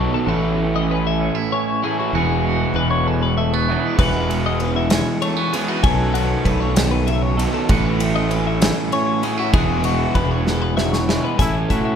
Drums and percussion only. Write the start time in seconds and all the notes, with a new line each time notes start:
3.98 kick, crash
4.30 ride
4.60 ride
4.90 snare, ride
5.22 ride
5.53 ride
5.84 kick, ride
6.15 ride
6.45 kick, ride
6.76 snare, ride
7.08 ride
7.39 ride
7.69 kick, ride
8.00 ride
8.31 ride
8.62 snare, ride
8.92 ride
9.23 ride
9.53 kick, ride
9.84 ride
10.15 kick, ride
10.47 snare
10.78 snare
10.93 snare
11.09 snare
11.39 kick, closed hi-hat
11.70 kick, closed hi-hat